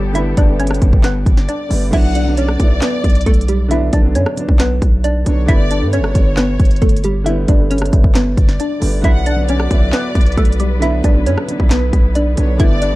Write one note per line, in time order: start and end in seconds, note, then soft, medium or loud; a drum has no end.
0.00 0.35 G1 loud
0.00 0.13 D3 loud
0.00 0.11 G3 medium
0.00 0.14 G3 loud
0.00 0.16 A3 loud
0.00 0.17 B3 loud
0.00 1.89 B3 medium
0.00 0.11 G4 medium
0.00 1.89 G4 medium
0.00 1.89 A4 medium
0.00 0.11 C#5 medium
0.13 0.38 D3 loud
0.13 0.39 G3 medium
0.13 0.40 A3 medium
0.13 0.33 E4 medium
0.13 0.33 E5 loud
0.13 closed hi-hat medium
0.17 0.40 B3 loud
0.37 0.80 G1 loud
0.37 0.56 D4 medium
0.37 0.55 D5 medium
0.37 kick loud
0.37 closed hi-hat medium
0.46 0.71 D3 medium
0.46 0.72 G3 medium
0.46 0.73 A3 medium
0.51 0.74 B3 medium
0.59 1.02 C#4 medium
0.59 1.01 C#5 medium
0.59 closed hi-hat medium
0.67 cross-stick loud
0.67 closed hi-hat medium
0.74 closed hi-hat medium
0.79 0.93 G1 loud
0.79 1.45 D3 medium
0.79 1.45 G3 medium
0.79 1.46 A3 medium
0.79 kick medium
0.79 closed hi-hat medium
0.84 1.47 B3 medium
0.93 1.25 G1 loud
0.93 kick medium
1.03 1.47 B3 medium
1.03 1.46 B4 medium
1.03 snare loud
1.03 clap loud
1.03 closed hi-hat medium
1.26 1.48 G1 loud
1.26 1.89 D5 medium
1.26 kick loud
1.26 closed hi-hat medium
1.37 snare medium
1.49 1.91 D4 medium
1.49 1.90 D5 medium
1.49 closed hi-hat medium
1.69 1.92 G1 loud
1.69 1.86 D3 medium
1.69 1.86 G3 medium
1.69 1.87 A3 medium
1.69 open hi-hat medium
1.73 1.88 B3 medium
1.91 2.57 B1 loud
1.91 2.16 D3 loud
1.91 2.17 F#3 medium
1.91 2.17 B3 medium
1.91 2.11 E4 medium
1.91 2.11 E5 loud
1.91 2.35 F#5 loud
1.91 kick loud
1.91 closed hi-hat medium
1.91 crash loud
1.95 2.18 D4 loud
2.15 2.33 D4 medium
2.15 2.33 D5 medium
2.15 closed hi-hat medium
2.24 2.49 D3 medium
2.24 2.50 F#3 medium
2.24 2.51 B3 medium
2.28 2.51 D4 medium
2.37 2.80 C#4 medium
2.37 2.79 C#5 medium
2.37 3.67 D5 loud
2.37 closed hi-hat medium
2.48 cross-stick loud
2.58 2.81 B1 loud
2.58 3.23 D3 medium
2.58 3.23 F#3 medium
2.58 3.24 B3 medium
2.58 kick medium
2.58 closed hi-hat medium
2.62 3.25 E4 medium
2.81 3.24 B3 medium
2.81 3.24 B4 medium
2.81 snare loud
2.81 clap loud
2.81 closed hi-hat medium
3.04 3.25 B1 loud
3.04 kick loud
3.04 closed hi-hat medium
3.10 closed hi-hat medium
3.15 closed hi-hat medium
3.21 closed hi-hat medium
3.26 3.90 B1 loud
3.26 3.45 A3 medium
3.26 3.44 A4 medium
3.26 kick medium
3.26 closed hi-hat medium
3.34 closed hi-hat medium
3.41 closed hi-hat medium
3.48 3.67 G3 medium
3.48 3.66 G4 medium
3.48 closed hi-hat medium
3.68 3.94 D3 loud
3.68 3.94 F#3 medium
3.68 3.95 B3 medium
3.68 3.89 E4 medium
3.68 3.89 E5 loud
3.68 closed hi-hat medium
3.73 3.96 D4 loud
3.93 4.17 B1 loud
3.93 4.11 D4 medium
3.93 4.11 D5 medium
3.93 kick loud
3.93 closed hi-hat medium
4.02 4.27 D3 medium
4.02 4.28 F#3 medium
4.02 4.28 B3 medium
4.06 4.29 D4 medium
4.15 4.26 F#2 loud
4.15 4.58 C#4 medium
4.15 4.57 C#5 medium
4.15 closed hi-hat medium
4.26 cross-stick loud
4.36 5.01 D3 medium
4.36 5.01 F#3 medium
4.36 5.02 B3 medium
4.36 closed hi-hat medium
4.40 5.03 D4 medium
4.49 4.81 B1 loud
4.49 kick loud
4.59 5.02 B3 medium
4.59 5.02 B4 medium
4.59 snare loud
4.59 clap loud
4.59 closed hi-hat medium
4.82 5.25 B1 loud
4.82 kick loud
4.82 closed hi-hat medium
5.04 5.46 D4 medium
5.04 5.46 D5 medium
5.04 closed hi-hat medium
5.24 5.48 B1 loud
5.24 5.41 D3 medium
5.24 5.42 F#3 medium
5.24 5.43 B3 medium
5.24 5.47 C#5 medium
5.24 closed hi-hat medium
5.29 5.44 D4 medium
5.46 5.83 G1 loud
5.46 5.71 D3 loud
5.46 5.72 G3 medium
5.46 5.73 A3 loud
5.46 5.67 E4 medium
5.46 5.90 D5 loud
5.46 5.66 E5 loud
5.46 kick loud
5.46 closed hi-hat medium
5.50 5.73 B3 loud
5.71 5.89 D4 medium
5.71 5.88 D5 medium
5.71 closed hi-hat medium
5.80 6.00 G2 medium
5.80 6.05 D3 medium
5.80 6.06 G3 medium
5.80 6.06 A3 medium
5.84 6.07 B3 medium
5.93 6.35 C#4 medium
5.93 7.22 C#5 medium
5.93 6.35 C#5 medium
5.93 closed hi-hat medium
5.99 6.14 G1 loud
6.04 cross-stick loud
6.13 6.58 G1 loud
6.13 6.78 D3 medium
6.13 6.79 G3 medium
6.13 6.80 A3 medium
6.13 kick medium
6.13 closed hi-hat medium
6.18 6.80 B3 medium
6.37 6.80 B3 medium
6.37 6.79 B4 medium
6.37 snare loud
6.37 clap loud
6.37 closed hi-hat medium
6.60 6.81 G1 loud
6.60 kick loud
6.60 closed hi-hat medium
6.65 closed hi-hat medium
6.71 closed hi-hat medium
6.76 closed hi-hat medium
6.82 7.46 G1 loud
6.82 7.00 A3 medium
6.82 7.00 A4 medium
6.82 kick medium
6.82 closed hi-hat medium
6.89 closed hi-hat medium
6.97 closed hi-hat medium
7.04 7.22 G3 medium
7.04 7.22 G4 medium
7.04 closed hi-hat medium
7.24 7.49 D3 loud
7.24 7.50 G3 medium
7.24 7.51 A3 medium
7.24 7.44 E4 medium
7.24 7.44 E5 loud
7.24 closed hi-hat medium
7.28 7.51 B3 loud
7.48 7.91 G1 loud
7.48 7.67 D4 medium
7.48 7.66 D5 medium
7.48 kick loud
7.48 closed hi-hat medium
7.57 7.83 D3 medium
7.57 7.83 G3 medium
7.57 7.84 A3 medium
7.62 7.85 B3 medium
7.71 8.13 C#4 medium
7.71 8.12 C#5 medium
7.71 closed hi-hat medium
7.78 cross-stick loud
7.78 closed hi-hat medium
7.86 closed hi-hat medium
7.90 8.04 G1 loud
7.90 8.56 D3 medium
7.90 8.56 G3 medium
7.90 8.57 A3 medium
7.90 kick medium
7.90 closed hi-hat medium
7.95 8.58 B3 medium
8.04 8.36 G1 loud
8.04 kick medium
8.15 8.58 B3 medium
8.15 8.57 B4 medium
8.15 snare loud
8.15 clap loud
8.15 closed hi-hat medium
8.37 8.59 G1 loud
8.37 9.00 D5 medium
8.37 kick loud
8.37 closed hi-hat medium
8.49 snare medium
8.60 9.02 D4 medium
8.60 9.01 D5 medium
8.60 closed hi-hat medium
8.80 9.03 G1 loud
8.80 8.97 D3 medium
8.80 8.97 G3 medium
8.80 8.98 A3 medium
8.80 open hi-hat medium
8.84 8.99 B3 medium
9.02 9.68 B1 loud
9.02 9.27 D3 loud
9.02 9.28 F#3 medium
9.02 12.96 B3 medium
9.02 9.28 B3 medium
9.02 9.22 E4 medium
9.02 10.80 F#4 medium
9.02 12.56 B4 medium
9.02 9.22 E5 loud
9.02 9.46 F#5 loud
9.02 kick loud
9.02 closed hi-hat medium
9.06 9.29 D4 loud
9.26 9.44 D4 medium
9.26 9.44 D5 medium
9.26 closed hi-hat medium
9.35 9.60 D3 medium
9.35 9.61 F#3 medium
9.35 9.62 B3 medium
9.39 9.62 D4 medium
9.49 9.91 C#4 medium
9.49 9.91 C#5 medium
9.49 10.78 D5 loud
9.49 closed hi-hat medium
9.60 cross-stick loud
9.69 9.92 B1 loud
9.69 10.34 D3 medium
9.69 10.34 F#3 medium
9.69 10.35 B3 medium
9.69 kick medium
9.69 closed hi-hat medium
9.73 10.36 E4 medium
9.92 10.35 B3 medium
9.92 10.35 B4 medium
9.92 snare loud
9.92 clap loud
9.92 closed hi-hat medium
10.15 10.37 B1 loud
10.15 kick loud
10.15 closed hi-hat medium
10.21 closed hi-hat medium
10.26 closed hi-hat medium
10.32 closed hi-hat medium
10.37 11.01 B1 loud
10.37 10.56 A3 medium
10.37 10.55 A4 medium
10.37 kick loud
10.37 closed hi-hat medium
10.45 closed hi-hat medium
10.52 closed hi-hat medium
10.60 10.78 G3 medium
10.60 10.77 G4 medium
10.60 closed hi-hat medium
10.79 11.05 D3 loud
10.79 11.05 F#3 medium
10.79 11.06 B3 loud
10.79 12.58 E4 medium
10.79 11.00 E4 medium
10.79 11.00 E5 loud
10.79 closed hi-hat medium
10.84 11.07 D4 loud
11.04 11.28 B1 loud
11.04 11.22 D4 medium
11.04 11.22 D5 medium
11.04 kick loud
11.04 closed hi-hat medium
11.13 11.38 D3 medium
11.13 11.39 F#3 medium
11.13 11.40 B3 medium
11.17 11.40 D4 medium
11.26 11.37 F#2 loud
11.26 11.69 C#4 medium
11.26 11.68 C#5 medium
11.26 closed hi-hat medium
11.38 cross-stick loud
11.47 12.12 D3 medium
11.47 12.12 F#3 medium
11.47 12.13 B3 medium
11.47 closed hi-hat medium
11.51 12.14 D4 medium
11.60 11.92 B1 loud
11.60 kick loud
11.70 12.13 B3 medium
11.70 12.13 B4 medium
11.70 snare loud
11.70 clap loud
11.70 closed hi-hat medium
11.93 12.36 B1 loud
11.93 kick loud
11.93 closed hi-hat medium
12.15 12.58 D4 medium
12.15 12.57 D5 medium
12.15 closed hi-hat medium
12.36 12.59 B1 loud
12.36 12.53 D3 medium
12.36 12.53 F#3 medium
12.36 12.54 B3 medium
12.36 12.59 C#5 medium
12.36 closed hi-hat medium
12.40 12.55 D4 medium
12.57 12.94 G1 loud
12.57 12.82 D3 loud
12.57 12.83 G3 medium
12.57 12.84 A3 medium
12.57 12.78 E4 medium
12.57 12.96 G4 medium
12.57 12.96 A4 medium
12.57 12.96 D5 loud
12.57 12.77 E5 loud
12.57 kick loud
12.57 closed hi-hat medium
12.62 12.85 B3 loud
12.82 12.96 D4 medium
12.82 12.96 D5 medium
12.82 closed hi-hat medium
12.91 12.96 D3 medium
12.91 12.96 G3 medium